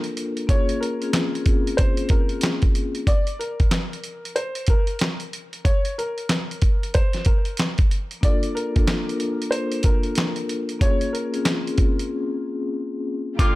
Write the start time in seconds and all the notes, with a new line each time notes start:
Already playing: A#3 D4 F4 A4 A#4
0.04 closed hi-hat
0.17 closed hi-hat
0.37 closed hi-hat
0.47 A#3 C#4 F4 G#4 C#5, kick, closed hi-hat
0.69 closed hi-hat
0.81 A#4, closed hi-hat
1.00 C4 C#4 F4 G#4, closed hi-hat
1.13 snare, clap, closed hi-hat
1.32 C4 C#4 F4 G#4, closed hi-hat
1.46 kick, closed hi-hat
1.67 closed hi-hat
1.77 C5, kick, closed hi-hat
1.97 closed hi-hat
2.09 A#4, kick, closed hi-hat
2.29 closed hi-hat
2.41 snare, clap, closed hi-hat
2.62 kick, closed hi-hat
2.75 closed hi-hat
2.95 closed hi-hat
3.07 D5, kick, closed hi-hat
3.27 closed hi-hat
3.39 A#4, closed hi-hat
3.60 kick, closed hi-hat
3.71 snare, clap, closed hi-hat
3.93 closed hi-hat
4.04 closed hi-hat
4.25 closed hi-hat
4.36 C5, closed hi-hat
4.55 closed hi-hat
4.67 A#4, kick, closed hi-hat
4.87 closed hi-hat
4.99 snare, clap, closed hi-hat
5.20 closed hi-hat
5.33 closed hi-hat
5.53 closed hi-hat
5.65 C#5, kick, closed hi-hat
5.85 closed hi-hat
5.98 A#4, closed hi-hat
6.18 closed hi-hat
6.29 snare, clap, closed hi-hat
6.51 closed hi-hat
6.62 kick, closed hi-hat
6.83 closed hi-hat
6.94 C5, kick, closed hi-hat
7.13 snare, closed hi-hat
7.25 A#4, kick, closed hi-hat
7.45 closed hi-hat
7.57 snare, clap, closed hi-hat
7.78 kick, closed hi-hat
7.91 closed hi-hat
8.11 closed hi-hat
8.21 A#3 D4 F4 A4 D5, kick, closed hi-hat
8.43 closed hi-hat
8.55 A#4, closed hi-hat
8.75 A#3 D4 F4 A4, kick, closed hi-hat
8.87 snare, clap, closed hi-hat
9.05 A#3 D4 F4 A#4
9.09 closed hi-hat
9.20 closed hi-hat
9.42 closed hi-hat
9.51 C5, closed hi-hat
9.72 closed hi-hat
9.83 A#4, kick, closed hi-hat
10.03 closed hi-hat
10.15 snare, clap, closed hi-hat
10.36 closed hi-hat
10.49 closed hi-hat
10.69 closed hi-hat
10.79 A#3 C#4 F4 G#4 C#5, kick, closed hi-hat
11.01 closed hi-hat
11.13 A#4, closed hi-hat
11.32 C4 C#4 F4 G#4, closed hi-hat
11.45 snare, clap, closed hi-hat
11.64 C4 C#4 F4 G#4, closed hi-hat
11.78 kick, closed hi-hat
11.99 closed hi-hat
13.37 A#2 D3 A#3 D4 F4 G4 A4 D6, kick, closed hi-hat